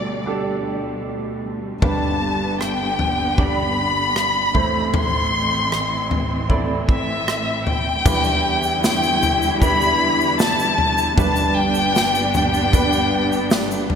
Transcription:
Already playing: D2 B2 D3 G3 D4 G4 A4 D5
0.26 D4 G4 A4
1.82 G1 G2 D3 B3 D4 G4 B4 A5, kick, floor tom
2.61 G5, cross-stick
2.99 floor tom
3.37 D4 G4 D5 B5, kick, floor tom
4.16 cross-stick
4.54 A1 A2 E3 C4 E4 A4 C5, kick, floor tom
4.94 C6, floor tom
5.72 cross-stick
6.11 floor tom
6.49 E4 A4 D5, kick, floor tom
6.89 E5, kick
7.28 cross-stick
7.67 G5, floor tom
8.05 E2 D3 E3 G3 D4 E4 G4 B4, kick, floor tom, crash, shaker
8.24 shaker
8.63 shaker
8.84 G5, snare, shaker
9.03 shaker
9.23 floor tom, shaker
9.42 shaker
9.61 D4 E4 G4 B4 B5, kick, floor tom, shaker
9.81 shaker
10.21 shaker
10.39 A5, snare, shaker
10.59 shaker
10.78 floor tom
10.98 shaker
11.17 G1 G2 G3 B3 D4 G4 B4 A5, kick, floor tom, shaker
11.36 shaker
11.58 G5
11.75 shaker
11.96 snare, shaker
12.15 shaker
12.34 G5, floor tom, shaker
12.54 shaker
12.73 D4 G4 B4, kick, floor tom, shaker
12.93 shaker
13.32 shaker
13.51 snare, shaker
13.71 shaker
13.90 floor tom

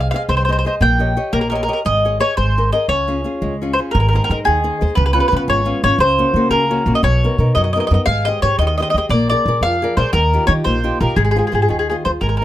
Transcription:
Already playing: C4 G#4 C5 D#5
0.00 F5
0.11 G#4 C5 D#5 F5
0.16 F5
0.29 C2 C4 C5
0.37 C5
0.45 G#4 C5
0.49 C5 D#5
0.59 C5
0.65 G#4 C5 D#5
0.81 A#1 A#3 G5
0.99 G4 C#5 D#5
1.17 G4 C#5 D#5
1.33 A#1 A#3 A#4
1.41 A#4
1.50 G4 A#4 C#5 D#5
1.55 A#4
1.63 A#4
1.68 G4 C#5 D#5
1.73 A#4
1.85 G#1 G#3 D#5
2.05 G#4 C#5 D#5
2.20 G#4 C#5 D#5
2.37 G#1 G#3 C5
2.58 G#4 A#4 C5
2.72 G#4 A#4 C5 D#5
2.88 C#2 C#3 C#5
3.08 C#4 F4 G#4
3.24 C#4 F4 G#4
3.42 C#2 G#3
3.62 C#4 F4 G#4
3.73 C5
3.79 C#4 F4 G#4
3.91 G#1 G#3 A#4
4.00 A#4
4.09 A#4
4.13 D#4 G#4 A#4 C5
4.24 A#4
4.30 G#2 D#4 G#4 A#4 C5
4.45 D#2 D#3 G#4
4.64 D#4 G#4 C5
4.81 D#2 D#4 G#4 C5
4.95 C#2 C#3 B4
5.06 B4
5.13 B3 C#4 F4 B4
5.20 B4
5.28 B3 F4 B4
5.32 C#3 C#4
5.37 B4
5.48 G#1 G#3 C#5
5.65 B3 C#4 F4
5.83 G#1 B3 C#4 F4 C#5
5.98 C#2 C#3 C5
6.18 A#3 C#4 F#4
6.34 C#3 A#3 C#4 F#4
6.50 C#2 C#3 A#4
6.71 A#3 C#4 F#4
6.86 A#1 A#3 C#4 F#4
6.95 D#5
7.03 B1 B2 C#5
7.24 B3 D#4 A#4
7.38 B2 B3 D#4 A#4
7.55 F#2 F#3 D#5
7.64 D#5
7.73 B3 D#4 D#5
7.77 A#4 D#5
7.87 F#2 D#5
7.91 B3 D#4 A#4 D#5
8.06 G#1 G#3 F5
8.25 G4 G#4 C5 D#5
8.42 G#2 G4 G#4 C5 C#5
8.58 D#2 D#3 D#5
8.67 D#5
8.78 G4 G#4 C5 D#5
8.82 D#5
8.90 D#5
8.94 D#2 G4 G#4 C5 D#5
9.09 A#1 A#3 D5
9.30 G#4 A#4 D5
9.45 A#2 G#4 A#4 D5
9.61 F2 F3 F5
9.82 G#4 A#4 D5
9.97 A#1 G#4 A#4 C5 D5
10.13 D#2 D#3 A#4
10.34 D#4 F4 G4
10.47 D#3 D#4 F4 G4 C#5
10.64 A#1 A#3 C5
10.84 D#4 F4 G4
11.01 A#1 D#4 F4 G4 A#4
11.16 G#1 G#3 G#4
11.25 G#4
11.31 G#4
11.36 F4 G#4 C5
11.47 G#4
11.52 G#2 F4 G#4 C5
11.62 G#4
11.69 D#2 D#3 G#4
11.79 G#4
11.90 F4 G#4 C5
12.05 D#2 F4 G#4 C5
12.21 G#1 G#3 A#4
12.29 A#4
12.37 A#4
12.41 D#4

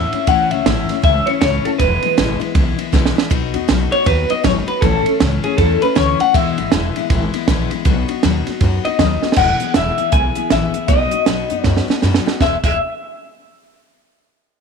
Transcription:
Already playing: E2 A2 E3 A3 C#4 E4 E5
0.12 A3 C#4 E4, muted upright bass stroke, ride
0.27 A1 A2 E3 A3 C#4 E4 F#5, kick, ride
0.51 C#2 A3 C#4 E4 E5, ride
0.66 A1 A2 E3 A3 C#4 E4, snare, ride
0.89 A3 C#4 E4, muted upright bass stroke, snare, ride
1.02 C#2 E3 A3 C#4 E4 E5, kick, ride
1.26 A3 C#4 E4 C#5, muted upright bass stroke, ride
1.41 C#2 A2 E3 A3 C#4 E4 C#5, kick, snare, ride
1.65 A3 C#4 E4 A4, ride
1.78 E1 E2 B2 E3 G#3 B3 E4 B4, kick, ride
2.02 E3 G#3 B3 E4, ride
2.17 G#1 E2 B2 E3 G#3 B3 E4, snare, ride
2.40 E3 G#3 B3 E4, muted upright bass stroke, ride
2.55 B1 E3 G#3 B3 E4, kick, ride
2.78 E3 G#3 B3 E4, muted upright bass stroke, ride
2.92 B1 E2 B2 E3 G#3 B3 E4, kick, snare
3.05 snare
3.16 E3 G#3 B3 E4, snare
3.30 B1 B2 F#3 B3 D#4 F#4, kick, ride
3.54 D#2 B3 D#4 F#4, ride
3.68 B1 B2 F#3 B3 D#4 F#4, snare, ride
3.91 B3 D#4 F#4 C#5, muted upright bass stroke, ride
4.04 D#2 F#3 B3 D#4 F#4 B4, kick, ride
4.29 B3 D#4 F#4 D#5, muted upright bass stroke, ride
4.44 G#1 B2 F#3 B3 D#4 F#4 C#5, kick, snare, ride
4.67 B3 D#4 F#4 B4, ride
4.81 A1 A2 E3 A3 C#4 E4 A4, kick, ride
5.06 A3 C#4 E4, muted upright bass stroke, ride
5.20 C#2 A2 E3 A3 C#4 E4, snare, ride
5.44 A3 C#4 E4 G#4, ride
5.58 E2 E3 A3 C#4 E4 A4, kick, ride
5.82 A3 C#4 E4 B4, ride
5.95 D2 A2 E3 A3 C#4 E4 C#5, kick, snare, ride
6.19 A3 C#4 E4 F#5, muted upright bass stroke, ride
6.34 E1 E2 B2 E3 G#3 B3 E4 E5, kick, ride
6.58 G#1 E3 G#3 B3 E4, ride
6.72 E1 E2 B2 E3 G#3 B3 E4, snare, ride
6.96 E3 G#3 B3 E4, ride
7.10 G#1 E3 G#3 B3 E4, kick, ride
7.34 E3 G#3 B3 E4, muted upright bass stroke, ride
7.48 A#1 E2 B2 E3 G#3 B3 E4, kick, snare, ride
7.71 E3 G#3 B3 E4, ride
7.85 B1 B2 F#3 B3 D#4 F#4, kick, ride
8.08 B3 D#4 F#4, ride
8.23 D#2 B2 F#3 B3 D#4 F#4, snare, ride
8.47 B3 D#4 F#4, muted upright bass stroke, snare, ride
8.61 F#2 F#3 B3 D#4 F#4, kick, ride
8.85 B3 D#4 F#4 D#5, muted upright bass stroke, ride
8.99 D#2 B2 F#3 B3 D#4 F#4, kick, snare, ride
9.22 B3 D#4 F#4, muted upright bass stroke, snare
9.32 snare
9.36 E1 E2 B2 E3 B3 E4 G#4 F#5, kick, crash
9.60 E3 B3 E4 G#4, muted upright bass stroke, closed hi-hat
9.74 E1 E2 B2 E3 B3 E4 G#4 E5, snare, closed hi-hat
9.98 E3 B3 E4 G#4, muted upright bass stroke, closed hi-hat
10.12 B1 E3 B3 E4 G#4 G#5, kick, closed hi-hat
10.35 E3 B3 E4 G#4, closed hi-hat
10.50 A1 E2 B2 E3 B3 E4 G#4 E5, snare, closed hi-hat
10.74 B3 E4 G#4, muted upright bass stroke, closed hi-hat
10.88 B1 B2 F#3 B3 D#4 F#4 D#5, kick, closed hi-hat
11.11 B3 D#4 F#4, muted upright bass stroke, closed hi-hat
11.26 B1 B2 F#3 B3 D#4 F#4, snare, closed hi-hat
11.50 F#2 B3 D#4 F#4, closed hi-hat
11.64 F#2 F#3 B3 D#4 F#4 C#5, kick, snare
11.77 snare
11.88 B3 D#4 F#4, muted upright bass stroke, snare
12.02 F#2 B2 F#3 B3 D#4 F#4, snare
12.14 snare
12.26 B3 D#4 F#4, muted upright bass stroke, snare
12.41 E1 E2 B2 E3 G#3 B3 G#4 E5, kick, snare
12.63 E1 E2 B2 E3 G#3 B3 G#4 E5, kick, crash

